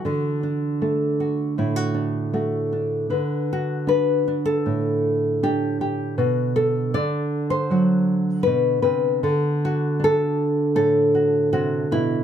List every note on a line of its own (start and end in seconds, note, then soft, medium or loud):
0.00 1.19 F#4 medium
0.05 3.09 D3 medium
0.05 0.43 D4 soft
0.43 1.94 D4 soft
0.82 2.32 A3 medium
1.20 1.58 F#4 soft
1.58 3.12 A2 medium
1.58 1.76 E4 soft
1.76 2.33 F#4 soft
1.94 2.72 D4 soft
2.33 3.07 A3 medium
2.33 3.10 F#4 soft
2.73 3.52 D4 soft
3.10 6.93 D3 medium
3.10 3.88 B4 soft
3.53 4.45 F#4 medium
3.87 4.27 D4 medium
3.87 5.23 B4 medium
4.28 5.43 D4 soft
4.46 5.42 A4 medium
4.66 6.19 A2 medium
5.43 7.53 D4 medium
5.43 5.80 G4 medium
5.81 6.19 G4 medium
6.18 6.95 B2 medium
6.18 6.55 F#4 soft
6.56 7.71 A4 medium
6.94 9.22 D3 medium
6.94 7.50 D5 medium
7.50 8.43 C5 medium
7.70 8.46 F#3 medium
7.70 9.19 F#4 soft
8.43 8.83 B2 medium
8.43 8.81 B4 medium
8.82 9.23 C3 medium
8.82 9.22 B4 medium
9.23 12.24 D3 medium
9.23 10.04 A4 soft
9.65 10.77 F#4 medium
10.00 12.24 D4 medium
10.04 10.75 A4 medium
10.75 12.24 A2 medium
10.75 11.91 A4 medium
11.15 11.51 F#4 soft
11.53 11.91 C3 medium
11.53 12.24 F#4 medium
11.91 12.24 B2 medium
11.91 12.24 E4 medium